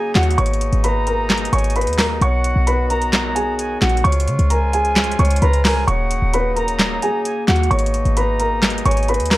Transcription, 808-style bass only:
0.15 D#2
0.38 G#1
0.73 G#1
1.53 G#1
1.87 D#2
2.21 B1
2.56 B1
3.82 A#1
4.05 C#2
4.28 C#3
4.39 C#2
5.19 C#2
5.42 C#2
5.88 D#1
6.22 D#1
7.48 D#2
7.71 G#1
8.05 G#1
8.86 G#1
9.20 D#2

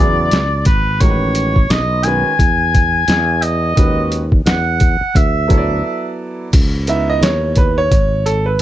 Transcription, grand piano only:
Already playing: C#3 F#3
0.00 B3 E4 G#4
1.00 D#3 G#3 C#4 F#4 A#4
1.10 B4
2.04 D#3 G#3 C#4 F#4 B4
3.75 D#3 G#3 C#4 F#4 B4
5.48 F#3 B3 E4 A4 C#5
5.58 D5
6.88 B3 D#4 E4 E5
7.10 D#5
7.23 C#5
7.58 B4
7.78 C#5
8.26 A4
8.46 B4

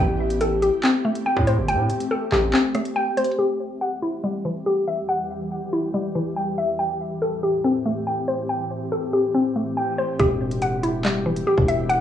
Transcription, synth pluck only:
0.00 G5
0.41 A4
0.62 G4
0.83 C4
1.05 A3
1.26 G5
1.47 C5
1.68 G5
2.11 A4
2.32 G4
2.54 C4
2.75 A3
2.96 G5
3.17 C5
3.39 G4
3.81 F#5
4.02 E4
4.24 G3
4.45 E3
4.66 G4
4.88 E5
5.09 F#5
5.73 E4
5.94 G3
6.15 E3
6.36 G5
6.58 E5
6.79 G5
7.22 A4
7.43 G4
7.64 C4
7.85 A3
8.07 G5
8.28 C5
8.49 G5
8.92 A4
9.13 G4
9.34 C4
9.56 A3
9.77 G5
9.98 C5
10.20 G4
10.62 F#5
10.83 E4
11.05 G3
11.26 E3
11.47 G4
11.68 E5
11.90 F#5

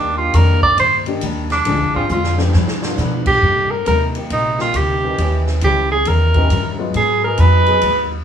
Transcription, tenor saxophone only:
Already playing: D4
0.18 F4
0.35 A#4
0.63 D5
0.80 C5
1.52 D4
1.96 F4
2.12 F4
3.27 G4
3.71 A#4
3.87 A#4
4.33 D#4
4.61 F4
4.76 G4
5.64 G4
5.92 G#4
6.07 A#4
6.97 G#4
7.24 A#4
7.40 B4

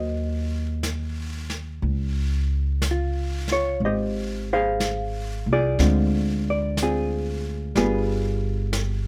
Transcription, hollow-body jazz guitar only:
Already playing: F#3 F#4 C5 D#5
2.91 F4
3.51 F4 C#5
3.85 G4 C5 D#5
4.53 G#4 C5 F5
5.53 F4 G#4 D5
5.79 D3 G#3 C4 F4
6.50 D5
6.82 C4 F4 G#4
7.76 G3 B3 F4 G#4

